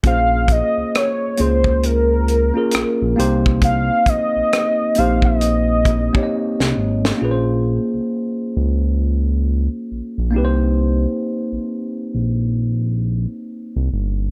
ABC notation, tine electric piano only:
X:1
M:4/4
L:1/16
Q:"Swing 16ths" 1/4=67
K:Bbdor
V:1 name="Tine electric piano"
[B,DFAc]4- [B,DFAc] z [B,DFAc]4 z [B,DFAB]3 [B,CEGc]2- | [B,CEGc]4- [B,CEGc] z [B,CEGc]4 z [B,CEGde]4 z | [B,DFA_c=c]12- [B,DFA_c=c]2 [B,CEG_c=c]2- | [B,CEG_c=c]12- [B,CEG_c=c]2 z2 |]